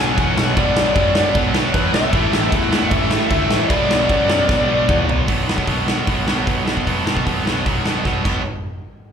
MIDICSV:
0, 0, Header, 1, 7, 480
1, 0, Start_track
1, 0, Key_signature, 2, "minor"
1, 0, Tempo, 393701
1, 697, Time_signature, 4, 2, 24, 8
1, 11123, End_track
2, 0, Start_track
2, 0, Title_t, "Lead electric guitar"
2, 0, Program_c, 0, 29
2, 0, Note_on_c, 0, 80, 111
2, 195, Note_off_c, 0, 80, 0
2, 237, Note_on_c, 0, 78, 78
2, 709, Note_on_c, 0, 74, 83
2, 720, Note_off_c, 0, 78, 0
2, 1610, Note_off_c, 0, 74, 0
2, 2124, Note_on_c, 0, 71, 76
2, 2350, Note_off_c, 0, 71, 0
2, 2361, Note_on_c, 0, 76, 89
2, 3054, Note_on_c, 0, 78, 113
2, 3104, Note_off_c, 0, 76, 0
2, 3518, Note_on_c, 0, 76, 98
2, 3563, Note_off_c, 0, 78, 0
2, 3991, Note_off_c, 0, 76, 0
2, 4005, Note_on_c, 0, 76, 76
2, 4478, Note_off_c, 0, 76, 0
2, 4483, Note_on_c, 0, 74, 92
2, 6132, Note_off_c, 0, 74, 0
2, 11123, End_track
3, 0, Start_track
3, 0, Title_t, "Distorted electric guitar"
3, 0, Program_c, 1, 30
3, 0, Note_on_c, 1, 47, 74
3, 0, Note_on_c, 1, 54, 80
3, 0, Note_on_c, 1, 59, 90
3, 672, Note_off_c, 1, 47, 0
3, 684, Note_off_c, 1, 54, 0
3, 687, Note_on_c, 1, 47, 99
3, 688, Note_off_c, 1, 59, 0
3, 704, Note_on_c, 1, 54, 87
3, 712, Note_on_c, 1, 59, 101
3, 1621, Note_off_c, 1, 47, 0
3, 1636, Note_off_c, 1, 54, 0
3, 1636, Note_on_c, 1, 47, 75
3, 1646, Note_off_c, 1, 59, 0
3, 1651, Note_on_c, 1, 54, 86
3, 1662, Note_on_c, 1, 59, 94
3, 2586, Note_off_c, 1, 47, 0
3, 2593, Note_off_c, 1, 54, 0
3, 2599, Note_off_c, 1, 59, 0
3, 2599, Note_on_c, 1, 45, 90
3, 2618, Note_on_c, 1, 52, 90
3, 2624, Note_on_c, 1, 57, 104
3, 3536, Note_off_c, 1, 45, 0
3, 3550, Note_on_c, 1, 45, 69
3, 3553, Note_off_c, 1, 52, 0
3, 3558, Note_off_c, 1, 57, 0
3, 3567, Note_on_c, 1, 52, 78
3, 3581, Note_on_c, 1, 57, 95
3, 4498, Note_off_c, 1, 45, 0
3, 4503, Note_on_c, 1, 47, 100
3, 4509, Note_off_c, 1, 52, 0
3, 4516, Note_off_c, 1, 57, 0
3, 4520, Note_on_c, 1, 54, 99
3, 4533, Note_on_c, 1, 59, 97
3, 5447, Note_off_c, 1, 47, 0
3, 5459, Note_off_c, 1, 54, 0
3, 5461, Note_on_c, 1, 47, 76
3, 5472, Note_off_c, 1, 59, 0
3, 5473, Note_on_c, 1, 54, 81
3, 5492, Note_on_c, 1, 59, 78
3, 6417, Note_off_c, 1, 47, 0
3, 6423, Note_off_c, 1, 54, 0
3, 6432, Note_off_c, 1, 59, 0
3, 6434, Note_on_c, 1, 47, 87
3, 6437, Note_on_c, 1, 54, 93
3, 6444, Note_on_c, 1, 59, 104
3, 6667, Note_off_c, 1, 47, 0
3, 6670, Note_off_c, 1, 54, 0
3, 6672, Note_on_c, 1, 47, 79
3, 6675, Note_on_c, 1, 54, 81
3, 6679, Note_off_c, 1, 59, 0
3, 6684, Note_on_c, 1, 59, 91
3, 6918, Note_off_c, 1, 47, 0
3, 6923, Note_on_c, 1, 47, 85
3, 6924, Note_off_c, 1, 54, 0
3, 6929, Note_on_c, 1, 54, 90
3, 6932, Note_off_c, 1, 59, 0
3, 6937, Note_on_c, 1, 59, 94
3, 7160, Note_off_c, 1, 47, 0
3, 7164, Note_off_c, 1, 54, 0
3, 7165, Note_on_c, 1, 47, 87
3, 7166, Note_off_c, 1, 59, 0
3, 7169, Note_on_c, 1, 54, 88
3, 7171, Note_on_c, 1, 59, 89
3, 7407, Note_off_c, 1, 47, 0
3, 7412, Note_off_c, 1, 54, 0
3, 7412, Note_on_c, 1, 47, 84
3, 7417, Note_on_c, 1, 54, 94
3, 7419, Note_off_c, 1, 59, 0
3, 7424, Note_on_c, 1, 59, 94
3, 7644, Note_off_c, 1, 59, 0
3, 7646, Note_off_c, 1, 47, 0
3, 7646, Note_off_c, 1, 54, 0
3, 7649, Note_on_c, 1, 59, 80
3, 7650, Note_on_c, 1, 47, 67
3, 7651, Note_on_c, 1, 54, 70
3, 7886, Note_off_c, 1, 47, 0
3, 7891, Note_on_c, 1, 47, 102
3, 7895, Note_off_c, 1, 54, 0
3, 7897, Note_off_c, 1, 59, 0
3, 7900, Note_on_c, 1, 54, 96
3, 7902, Note_on_c, 1, 59, 106
3, 8132, Note_off_c, 1, 54, 0
3, 8133, Note_off_c, 1, 47, 0
3, 8137, Note_on_c, 1, 47, 82
3, 8137, Note_on_c, 1, 54, 78
3, 8139, Note_off_c, 1, 59, 0
3, 8144, Note_on_c, 1, 59, 91
3, 8362, Note_off_c, 1, 47, 0
3, 8370, Note_off_c, 1, 59, 0
3, 8371, Note_off_c, 1, 54, 0
3, 8377, Note_on_c, 1, 47, 81
3, 8385, Note_on_c, 1, 54, 90
3, 8385, Note_on_c, 1, 59, 90
3, 8602, Note_off_c, 1, 47, 0
3, 8602, Note_off_c, 1, 54, 0
3, 8605, Note_off_c, 1, 59, 0
3, 8617, Note_on_c, 1, 47, 71
3, 8617, Note_on_c, 1, 54, 86
3, 8620, Note_on_c, 1, 59, 90
3, 8833, Note_off_c, 1, 47, 0
3, 8843, Note_off_c, 1, 54, 0
3, 8848, Note_on_c, 1, 47, 81
3, 8850, Note_off_c, 1, 59, 0
3, 8858, Note_on_c, 1, 54, 86
3, 8864, Note_on_c, 1, 59, 97
3, 9075, Note_off_c, 1, 47, 0
3, 9077, Note_off_c, 1, 54, 0
3, 9085, Note_off_c, 1, 59, 0
3, 9089, Note_on_c, 1, 47, 82
3, 9091, Note_on_c, 1, 54, 90
3, 9100, Note_on_c, 1, 59, 97
3, 9314, Note_off_c, 1, 47, 0
3, 9322, Note_off_c, 1, 54, 0
3, 9322, Note_off_c, 1, 59, 0
3, 9329, Note_on_c, 1, 47, 85
3, 9336, Note_on_c, 1, 54, 92
3, 9337, Note_on_c, 1, 59, 89
3, 9551, Note_off_c, 1, 47, 0
3, 9564, Note_off_c, 1, 54, 0
3, 9564, Note_off_c, 1, 59, 0
3, 9566, Note_on_c, 1, 47, 74
3, 9578, Note_on_c, 1, 54, 70
3, 9578, Note_on_c, 1, 59, 79
3, 9804, Note_off_c, 1, 47, 0
3, 9805, Note_off_c, 1, 54, 0
3, 9814, Note_off_c, 1, 59, 0
3, 9819, Note_on_c, 1, 47, 87
3, 9819, Note_on_c, 1, 54, 89
3, 9829, Note_on_c, 1, 59, 94
3, 10027, Note_off_c, 1, 47, 0
3, 10038, Note_off_c, 1, 54, 0
3, 10042, Note_on_c, 1, 47, 83
3, 10047, Note_off_c, 1, 59, 0
3, 10053, Note_on_c, 1, 54, 79
3, 10062, Note_on_c, 1, 59, 86
3, 10242, Note_off_c, 1, 47, 0
3, 10248, Note_off_c, 1, 54, 0
3, 10252, Note_off_c, 1, 59, 0
3, 11123, End_track
4, 0, Start_track
4, 0, Title_t, "Distorted electric guitar"
4, 0, Program_c, 2, 30
4, 0, Note_on_c, 2, 47, 64
4, 0, Note_on_c, 2, 54, 80
4, 0, Note_on_c, 2, 59, 75
4, 189, Note_off_c, 2, 47, 0
4, 195, Note_off_c, 2, 59, 0
4, 203, Note_on_c, 2, 47, 82
4, 205, Note_off_c, 2, 54, 0
4, 222, Note_on_c, 2, 54, 87
4, 242, Note_on_c, 2, 59, 104
4, 666, Note_off_c, 2, 47, 0
4, 681, Note_on_c, 2, 47, 88
4, 684, Note_off_c, 2, 54, 0
4, 694, Note_off_c, 2, 59, 0
4, 701, Note_on_c, 2, 54, 93
4, 718, Note_on_c, 2, 59, 95
4, 1868, Note_off_c, 2, 59, 0
4, 1869, Note_off_c, 2, 47, 0
4, 1879, Note_off_c, 2, 54, 0
4, 1883, Note_on_c, 2, 59, 89
4, 1903, Note_on_c, 2, 54, 84
4, 1919, Note_on_c, 2, 47, 60
4, 2094, Note_off_c, 2, 47, 0
4, 2108, Note_on_c, 2, 47, 85
4, 2112, Note_off_c, 2, 59, 0
4, 2118, Note_off_c, 2, 54, 0
4, 2132, Note_on_c, 2, 54, 87
4, 2143, Note_on_c, 2, 59, 85
4, 2580, Note_off_c, 2, 47, 0
4, 2585, Note_on_c, 2, 45, 96
4, 2595, Note_off_c, 2, 54, 0
4, 2601, Note_off_c, 2, 59, 0
4, 2602, Note_on_c, 2, 52, 95
4, 2621, Note_on_c, 2, 57, 110
4, 3765, Note_off_c, 2, 57, 0
4, 3778, Note_off_c, 2, 45, 0
4, 3779, Note_on_c, 2, 57, 87
4, 3780, Note_off_c, 2, 52, 0
4, 3795, Note_on_c, 2, 52, 72
4, 3812, Note_on_c, 2, 45, 74
4, 3996, Note_off_c, 2, 45, 0
4, 4011, Note_on_c, 2, 45, 86
4, 4017, Note_off_c, 2, 57, 0
4, 4018, Note_off_c, 2, 52, 0
4, 4033, Note_on_c, 2, 52, 82
4, 4054, Note_on_c, 2, 57, 98
4, 4486, Note_off_c, 2, 45, 0
4, 4491, Note_on_c, 2, 47, 90
4, 4503, Note_off_c, 2, 52, 0
4, 4513, Note_off_c, 2, 57, 0
4, 4516, Note_on_c, 2, 54, 88
4, 4530, Note_on_c, 2, 59, 105
4, 5690, Note_off_c, 2, 47, 0
4, 5695, Note_off_c, 2, 59, 0
4, 5703, Note_off_c, 2, 54, 0
4, 5710, Note_on_c, 2, 59, 89
4, 5731, Note_on_c, 2, 54, 76
4, 5743, Note_on_c, 2, 47, 64
4, 5930, Note_off_c, 2, 47, 0
4, 5941, Note_off_c, 2, 59, 0
4, 5944, Note_on_c, 2, 47, 71
4, 5945, Note_off_c, 2, 54, 0
4, 5959, Note_on_c, 2, 54, 82
4, 5981, Note_on_c, 2, 59, 87
4, 6418, Note_off_c, 2, 47, 0
4, 6426, Note_off_c, 2, 54, 0
4, 6437, Note_off_c, 2, 59, 0
4, 11123, End_track
5, 0, Start_track
5, 0, Title_t, "Overdriven electric guitar"
5, 0, Program_c, 3, 29
5, 0, Note_on_c, 3, 47, 78
5, 0, Note_on_c, 3, 54, 87
5, 0, Note_on_c, 3, 59, 97
5, 665, Note_off_c, 3, 47, 0
5, 678, Note_off_c, 3, 59, 0
5, 683, Note_off_c, 3, 54, 0
5, 1398, Note_on_c, 3, 59, 110
5, 1417, Note_on_c, 3, 54, 101
5, 1435, Note_on_c, 3, 47, 79
5, 2584, Note_off_c, 3, 47, 0
5, 2586, Note_off_c, 3, 59, 0
5, 2596, Note_off_c, 3, 54, 0
5, 3306, Note_on_c, 3, 57, 109
5, 3324, Note_on_c, 3, 52, 96
5, 3343, Note_on_c, 3, 45, 84
5, 4496, Note_off_c, 3, 45, 0
5, 4498, Note_off_c, 3, 57, 0
5, 4507, Note_off_c, 3, 52, 0
5, 5216, Note_on_c, 3, 59, 97
5, 5234, Note_on_c, 3, 54, 96
5, 5250, Note_on_c, 3, 47, 81
5, 6409, Note_off_c, 3, 47, 0
5, 6414, Note_off_c, 3, 59, 0
5, 6417, Note_off_c, 3, 54, 0
5, 11123, End_track
6, 0, Start_track
6, 0, Title_t, "Picked electric bass"
6, 0, Program_c, 4, 34
6, 0, Note_on_c, 4, 35, 88
6, 124, Note_off_c, 4, 35, 0
6, 214, Note_on_c, 4, 40, 104
6, 407, Note_off_c, 4, 40, 0
6, 459, Note_on_c, 4, 35, 89
6, 650, Note_off_c, 4, 35, 0
6, 692, Note_on_c, 4, 35, 106
6, 885, Note_off_c, 4, 35, 0
6, 930, Note_on_c, 4, 35, 84
6, 1123, Note_off_c, 4, 35, 0
6, 1164, Note_on_c, 4, 42, 96
6, 1551, Note_off_c, 4, 42, 0
6, 1651, Note_on_c, 4, 35, 96
6, 2034, Note_off_c, 4, 35, 0
6, 2128, Note_on_c, 4, 40, 99
6, 2321, Note_off_c, 4, 40, 0
6, 2371, Note_on_c, 4, 35, 94
6, 2562, Note_off_c, 4, 35, 0
6, 2596, Note_on_c, 4, 33, 105
6, 2793, Note_off_c, 4, 33, 0
6, 2844, Note_on_c, 4, 33, 88
6, 3037, Note_off_c, 4, 33, 0
6, 3074, Note_on_c, 4, 40, 102
6, 3463, Note_off_c, 4, 40, 0
6, 3555, Note_on_c, 4, 33, 99
6, 3942, Note_off_c, 4, 33, 0
6, 4035, Note_on_c, 4, 38, 95
6, 4230, Note_off_c, 4, 38, 0
6, 4277, Note_on_c, 4, 33, 96
6, 4471, Note_off_c, 4, 33, 0
6, 4506, Note_on_c, 4, 35, 99
6, 4705, Note_off_c, 4, 35, 0
6, 4745, Note_on_c, 4, 35, 100
6, 4943, Note_off_c, 4, 35, 0
6, 4996, Note_on_c, 4, 42, 98
6, 5382, Note_off_c, 4, 42, 0
6, 5473, Note_on_c, 4, 35, 104
6, 5861, Note_off_c, 4, 35, 0
6, 5961, Note_on_c, 4, 40, 93
6, 6153, Note_off_c, 4, 40, 0
6, 6193, Note_on_c, 4, 35, 89
6, 6389, Note_off_c, 4, 35, 0
6, 6445, Note_on_c, 4, 35, 87
6, 6650, Note_off_c, 4, 35, 0
6, 6676, Note_on_c, 4, 35, 90
6, 6885, Note_off_c, 4, 35, 0
6, 6921, Note_on_c, 4, 35, 81
6, 7334, Note_off_c, 4, 35, 0
6, 7409, Note_on_c, 4, 35, 85
6, 7613, Note_off_c, 4, 35, 0
6, 7642, Note_on_c, 4, 35, 88
6, 7849, Note_off_c, 4, 35, 0
6, 7891, Note_on_c, 4, 35, 78
6, 8095, Note_off_c, 4, 35, 0
6, 8111, Note_on_c, 4, 35, 83
6, 8324, Note_off_c, 4, 35, 0
6, 8382, Note_on_c, 4, 35, 88
6, 8582, Note_off_c, 4, 35, 0
6, 8607, Note_on_c, 4, 35, 85
6, 8814, Note_off_c, 4, 35, 0
6, 8857, Note_on_c, 4, 35, 81
6, 9061, Note_off_c, 4, 35, 0
6, 9096, Note_on_c, 4, 35, 81
6, 9301, Note_off_c, 4, 35, 0
6, 9334, Note_on_c, 4, 35, 75
6, 9541, Note_off_c, 4, 35, 0
6, 9584, Note_on_c, 4, 35, 84
6, 9787, Note_off_c, 4, 35, 0
6, 9823, Note_on_c, 4, 47, 82
6, 10027, Note_off_c, 4, 47, 0
6, 10064, Note_on_c, 4, 35, 77
6, 10285, Note_off_c, 4, 35, 0
6, 11123, End_track
7, 0, Start_track
7, 0, Title_t, "Drums"
7, 217, Note_on_c, 9, 36, 100
7, 218, Note_on_c, 9, 49, 63
7, 338, Note_off_c, 9, 36, 0
7, 340, Note_off_c, 9, 49, 0
7, 458, Note_on_c, 9, 38, 119
7, 580, Note_off_c, 9, 38, 0
7, 693, Note_on_c, 9, 36, 118
7, 694, Note_on_c, 9, 49, 65
7, 815, Note_off_c, 9, 36, 0
7, 816, Note_off_c, 9, 49, 0
7, 933, Note_on_c, 9, 38, 126
7, 1055, Note_off_c, 9, 38, 0
7, 1165, Note_on_c, 9, 49, 64
7, 1167, Note_on_c, 9, 36, 110
7, 1287, Note_off_c, 9, 49, 0
7, 1289, Note_off_c, 9, 36, 0
7, 1404, Note_on_c, 9, 38, 118
7, 1526, Note_off_c, 9, 38, 0
7, 1647, Note_on_c, 9, 36, 121
7, 1647, Note_on_c, 9, 49, 70
7, 1769, Note_off_c, 9, 36, 0
7, 1769, Note_off_c, 9, 49, 0
7, 1883, Note_on_c, 9, 38, 114
7, 2005, Note_off_c, 9, 38, 0
7, 2120, Note_on_c, 9, 49, 64
7, 2123, Note_on_c, 9, 36, 108
7, 2242, Note_off_c, 9, 49, 0
7, 2245, Note_off_c, 9, 36, 0
7, 2366, Note_on_c, 9, 38, 127
7, 2488, Note_off_c, 9, 38, 0
7, 2597, Note_on_c, 9, 36, 123
7, 2600, Note_on_c, 9, 49, 65
7, 2719, Note_off_c, 9, 36, 0
7, 2722, Note_off_c, 9, 49, 0
7, 2845, Note_on_c, 9, 38, 118
7, 2967, Note_off_c, 9, 38, 0
7, 3076, Note_on_c, 9, 36, 113
7, 3079, Note_on_c, 9, 49, 65
7, 3198, Note_off_c, 9, 36, 0
7, 3201, Note_off_c, 9, 49, 0
7, 3323, Note_on_c, 9, 38, 119
7, 3445, Note_off_c, 9, 38, 0
7, 3552, Note_on_c, 9, 36, 113
7, 3552, Note_on_c, 9, 49, 77
7, 3673, Note_off_c, 9, 36, 0
7, 3674, Note_off_c, 9, 49, 0
7, 3790, Note_on_c, 9, 38, 116
7, 3912, Note_off_c, 9, 38, 0
7, 4029, Note_on_c, 9, 49, 66
7, 4031, Note_on_c, 9, 36, 108
7, 4151, Note_off_c, 9, 49, 0
7, 4153, Note_off_c, 9, 36, 0
7, 4274, Note_on_c, 9, 38, 122
7, 4396, Note_off_c, 9, 38, 0
7, 4511, Note_on_c, 9, 36, 127
7, 4520, Note_on_c, 9, 49, 67
7, 4633, Note_off_c, 9, 36, 0
7, 4642, Note_off_c, 9, 49, 0
7, 4764, Note_on_c, 9, 38, 122
7, 4886, Note_off_c, 9, 38, 0
7, 4992, Note_on_c, 9, 36, 113
7, 4996, Note_on_c, 9, 49, 62
7, 5114, Note_off_c, 9, 36, 0
7, 5118, Note_off_c, 9, 49, 0
7, 5237, Note_on_c, 9, 38, 120
7, 5359, Note_off_c, 9, 38, 0
7, 5475, Note_on_c, 9, 36, 123
7, 5483, Note_on_c, 9, 38, 76
7, 5597, Note_off_c, 9, 36, 0
7, 5605, Note_off_c, 9, 38, 0
7, 5960, Note_on_c, 9, 36, 106
7, 5969, Note_on_c, 9, 45, 95
7, 6082, Note_off_c, 9, 36, 0
7, 6091, Note_off_c, 9, 45, 0
7, 6209, Note_on_c, 9, 43, 105
7, 6331, Note_off_c, 9, 43, 0
7, 6440, Note_on_c, 9, 46, 60
7, 6441, Note_on_c, 9, 36, 118
7, 6562, Note_off_c, 9, 46, 0
7, 6563, Note_off_c, 9, 36, 0
7, 6698, Note_on_c, 9, 38, 106
7, 6801, Note_on_c, 9, 36, 76
7, 6820, Note_off_c, 9, 38, 0
7, 6914, Note_on_c, 9, 46, 57
7, 6919, Note_off_c, 9, 36, 0
7, 6919, Note_on_c, 9, 36, 90
7, 7036, Note_off_c, 9, 46, 0
7, 7041, Note_off_c, 9, 36, 0
7, 7169, Note_on_c, 9, 38, 106
7, 7291, Note_off_c, 9, 38, 0
7, 7405, Note_on_c, 9, 36, 117
7, 7407, Note_on_c, 9, 46, 60
7, 7527, Note_off_c, 9, 36, 0
7, 7529, Note_off_c, 9, 46, 0
7, 7653, Note_on_c, 9, 38, 102
7, 7775, Note_off_c, 9, 38, 0
7, 7890, Note_on_c, 9, 36, 94
7, 7894, Note_on_c, 9, 46, 50
7, 8012, Note_off_c, 9, 36, 0
7, 8016, Note_off_c, 9, 46, 0
7, 8138, Note_on_c, 9, 38, 104
7, 8255, Note_on_c, 9, 36, 67
7, 8260, Note_off_c, 9, 38, 0
7, 8377, Note_off_c, 9, 36, 0
7, 8377, Note_on_c, 9, 36, 83
7, 8384, Note_on_c, 9, 46, 54
7, 8499, Note_off_c, 9, 36, 0
7, 8506, Note_off_c, 9, 46, 0
7, 8620, Note_on_c, 9, 38, 105
7, 8737, Note_on_c, 9, 36, 77
7, 8742, Note_off_c, 9, 38, 0
7, 8858, Note_off_c, 9, 36, 0
7, 8861, Note_on_c, 9, 36, 93
7, 8870, Note_on_c, 9, 46, 55
7, 8983, Note_off_c, 9, 36, 0
7, 8992, Note_off_c, 9, 46, 0
7, 9111, Note_on_c, 9, 38, 99
7, 9233, Note_off_c, 9, 38, 0
7, 9340, Note_on_c, 9, 46, 48
7, 9341, Note_on_c, 9, 36, 94
7, 9461, Note_off_c, 9, 46, 0
7, 9463, Note_off_c, 9, 36, 0
7, 9577, Note_on_c, 9, 38, 103
7, 9699, Note_off_c, 9, 38, 0
7, 9818, Note_on_c, 9, 36, 84
7, 9819, Note_on_c, 9, 38, 49
7, 9940, Note_off_c, 9, 36, 0
7, 9940, Note_off_c, 9, 38, 0
7, 10061, Note_on_c, 9, 36, 101
7, 10068, Note_on_c, 9, 57, 79
7, 10183, Note_off_c, 9, 36, 0
7, 10190, Note_off_c, 9, 57, 0
7, 11123, End_track
0, 0, End_of_file